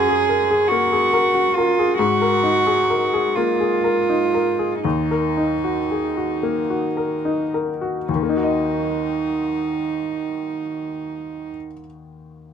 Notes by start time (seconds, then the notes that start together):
Already playing: F#2 F#4 G#4 A#4
0.09 G#4
0.29 A#4
0.51 G#4
0.68 A#3 F#4
0.93 G#4
1.13 A#4
1.34 F#4
1.55 F4 A#4
1.79 G#4
1.98 G#2 F#4
2.22 A#4
2.43 D#4
2.67 G#4
2.90 A#4
3.14 G#4
3.35 A#3 F4
3.60 G#4
3.84 A#4
4.09 D#4
4.34 A#4
4.59 G#4
4.82 D#2 D#4
5.11 A#4
5.37 D#4
5.64 F#4
5.91 G#4
6.17 F#4
6.43 A#3
6.70 F#4
6.97 A#4
7.25 D#4
7.54 A#4
7.81 F#4
8.09 D#2 D#4
8.15 D#3
8.23 A#3
8.29 D#4
8.37 F#4
8.44 D#5